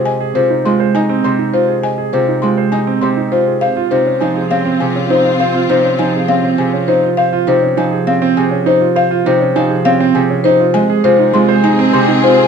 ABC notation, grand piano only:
X:1
M:3/4
L:1/16
Q:1/4=101
K:Db
V:1 name="Grand piano"
e A F E F c E C c E F A | e A F E F c E C c E F A | c F E D E A D C A D E F | c F E D E A D C A D E F |
c F E D E A D C A D E F | c F E D E A D C A D E F | e A F E F c E C c E F A |]